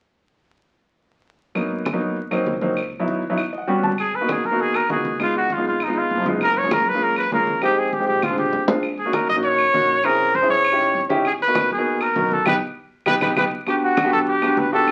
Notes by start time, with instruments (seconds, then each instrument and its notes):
1.55 upright bass G#1, grand piano F#3 A#3 B3 D#4, high conga, claves
1.71 high conga
1.85 high conga, claves
1.93 grand piano F#3 A#3 B3 D#4
2.01 upright bass G#1, high conga
2.16 high conga
2.31 grand piano F#3 A#3 C4 D#4, high conga, claves
2.46 upright bass C#2, high conga
2.61 grand piano F#3 A#3 C4 D#4, high conga
2.77 high conga, claves
2.92 high conga
2.99 grand piano F#3 B3 D#4 E4
3.08 high conga
3.22 upright bass D#2
3.30 grand piano F#3 B3 D#4 E4
3.38 high conga, claves
3.53 grand piano D#5, high conga
3.58 grand piano F#5
3.67 upright bass G#1, grand piano G3 B3 C#4 F#4 G5, high conga
3.83 grand piano A5, high conga
3.98 trumpet G#4, high conga, claves
4.14 trumpet B4, high conga
4.21 grand piano A#3 B3 D#4 F#4
4.29 trumpet G#4, high conga, claves
4.44 upright bass D#2, trumpet A#4, high conga
4.51 grand piano A#3 B3 D#4 F#4
4.59 trumpet G#4, high conga
4.74 trumpet A#4, high conga, claves
4.89 upright bass C#2, grand piano A#3 B3 D#4 F#4, trumpet G#4, high conga
5.05 high conga
5.19 grand piano G#3 B3 D#4 F4, trumpet F4, high conga, claves
5.35 trumpet F#4, high conga
5.50 trumpet F4, high conga
5.57 grand piano G#3 B3 D#4 F4
5.65 upright bass G#1, trumpet F4
5.80 trumpet D#4, high conga, claves
5.87 grand piano G#3 B3 D#4 F4
5.96 trumpet F4, high conga
6.10 upright bass F#1, high conga
6.26 grand piano G#3 B3 D#4 F4, high conga
6.41 trumpet A#4, high conga, claves
6.56 trumpet C#5, high conga
6.64 grand piano G#3 A#3 C#4 F4
6.71 trumpet A#4, high conga, claves
6.86 upright bass F#2, trumpet B4, high conga
6.94 grand piano G#3 A#3 C#4 F4
7.02 trumpet A#4, high conga
7.16 trumpet B4, high conga, claves
7.32 upright bass F2, grand piano G#3 A#3 C#4 F4, trumpet A#4, high conga
7.47 high conga
7.61 grand piano G#3 C4 D#4 G4, trumpet G4, high conga, claves
7.77 trumpet G#4, high conga
7.93 trumpet G4, high conga
7.99 grand piano G#3 C4 D#4 G4
8.07 upright bass A#1, trumpet G4
8.22 trumpet F4, high conga, claves
8.29 grand piano G#3 C4 D4 F4
8.38 trumpet G4, high conga
8.52 upright bass D#2, low conga
8.67 grand piano G#3 C4 D4 F4, low conga
8.83 high conga, claves
8.98 trumpet G#4, high conga
9.05 grand piano A#3 C#4 D#4 F#4
9.13 trumpet A#4, high conga, claves
9.28 upright bass A#1, trumpet D#5, high conga
9.35 grand piano A#3 C#4 D#4 F#4
9.44 trumpet C#5, high conga
9.59 high conga, claves
9.73 upright bass A#1, grand piano A#3 C#4 D#4 F#4, high conga
10.04 grand piano C4 C#4 E4 G#4, trumpet A#4, high conga, claves
10.19 high conga
10.35 trumpet C5, high conga
10.41 grand piano C4 C#4 E4 G#4
10.49 upright bass A1, trumpet C#5
10.65 high conga, claves
10.72 grand piano C#4 D#4 E4 G4
10.80 high conga
10.94 upright bass G#1, high conga
11.09 grand piano C#4 D#4 E4 G4, high conga
11.25 trumpet G#4, high conga, claves
11.40 trumpet B4, high conga
11.47 grand piano B3 D#4 F#4 A#4
11.55 high conga, claves
11.70 upright bass D#2, trumpet G#4, high conga
11.78 grand piano B3 D#4 F#4 A#4
11.86 high conga
12.01 trumpet A#4, high conga, claves
12.15 upright bass B1, grand piano B3 D#4 F#4 A#4, high conga
12.31 trumpet A4, high conga
12.46 upright bass B1, grand piano B3 D#4 G4, trumpet B4, high conga, claves
13.06 upright bass B1, grand piano B3 D#4 G4, trumpet B4, high conga, claves
13.21 upright bass B1, grand piano B3 D#4 G4, trumpet B4, high conga, claves
13.36 upright bass B1, grand piano B3 D#4 G4, trumpet B4, high conga, claves
13.66 grand piano B3 D4 F#4 G4, trumpet G4, high conga, claves
13.82 trumpet F#4, high conga
13.97 high conga, claves
14.04 grand piano B3 D4 F#4 G4
14.12 upright bass B1, trumpet A4, high conga
14.27 trumpet G4, high conga
14.42 grand piano B3 D4 F#4 G4, high conga, claves
14.57 upright bass A1, trumpet B4, high conga
14.72 grand piano B3 D4 F#4 G4, trumpet A4
14.88 high conga, claves